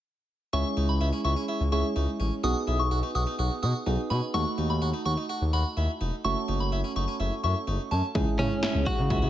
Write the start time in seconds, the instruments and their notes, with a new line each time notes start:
0.53 analog synth bass C#2, synth keys G#3 C#4 E4 G#4, harpsichord E4, synth bell C#6
0.77 analog synth bass C#2, harpsichord D#4
0.89 analog synth bass C#2, synth bell B5
1.01 analog synth bass C#2, harpsichord E4
1.13 harpsichord C#4
1.25 analog synth bass C#2, harpsichord E4, synth bell C#6
1.37 harpsichord C#4
1.48 harpsichord E4
1.60 analog synth bass C#2
1.72 analog synth bass C#2, synth keys G#3 C#4 E4 G#4, harpsichord E4, synth bell C#6
1.96 analog synth bass C#2, harpsichord D#4
2.20 analog synth bass A1, harpsichord C#4
2.44 analog synth bass B1, synth keys B3 D#4 F#4 G#4, harpsichord F#4, synth bell D#6
2.67 analog synth bass B1, harpsichord E4
2.79 analog synth bass B1, synth bell C#6
2.91 analog synth bass B1, harpsichord F#4
3.03 harpsichord D#4
3.15 analog synth bass B1, harpsichord F#4, synth bell D#6
3.27 harpsichord D#4
3.39 analog synth bass B1, harpsichord F#4
3.63 analog synth bass B2, harpsichord F#4, synth bell D#6
3.86 analog synth bass B1, synth keys B3 D#4 F#4 G#4, harpsichord D#4
4.10 analog synth bass B2, harpsichord C#4, synth bell B5
4.34 analog synth bass D#2, synth keys A3 D#4 F#4 A4, harpsichord F#4, synth bell C#6
4.58 analog synth bass D#2, harpsichord D#4
4.70 analog synth bass D#2, synth bell B5
4.82 analog synth bass D#2, harpsichord F#4
4.94 harpsichord D#4
5.06 analog synth bass D#2, harpsichord F#4, synth bell C#6
5.17 harpsichord D#4
5.29 harpsichord F#4
5.41 analog synth bass D#2
5.53 analog synth bass D#2, harpsichord F#4, synth bell B5
5.77 analog synth bass D#2, harpsichord E4
6.01 analog synth bass E1, harpsichord D#4
6.25 analog synth bass F#1, synth keys A3 C#4 F#4 A4, harpsichord E4, synth bell C#6
6.48 analog synth bass F#1, harpsichord D#4
6.60 analog synth bass F#1, synth bell B5
6.72 analog synth bass F#1, harpsichord E4
6.84 harpsichord C#4
6.96 analog synth bass F#1, harpsichord D#4, synth bell C#6
7.08 harpsichord C#4
7.20 analog synth bass F#1, harpsichord E4
7.44 analog synth bass F#2, harpsichord E4, synth bell C#6
7.67 analog synth bass F#1, harpsichord D#4
7.91 analog synth bass F#2, harpsichord C#4, synth bell A5
8.15 analog synth bass C#2, synth keys G#3 C#4 E4 G#4, harpsichord D#4, kick
8.39 analog synth bass C#3, synth keys G#3 C#4 E4 G#4, harpsichord C#4, clean electric guitar C#4, mid tom
8.63 harpsichord E4, snare
8.75 analog synth bass C#2
8.86 harpsichord F#4, clean electric guitar F#4, kick
8.98 analog synth bass C#3
9.10 analog synth bass C#2, harpsichord E4, kick
9.22 analog synth bass C#3, harpsichord E4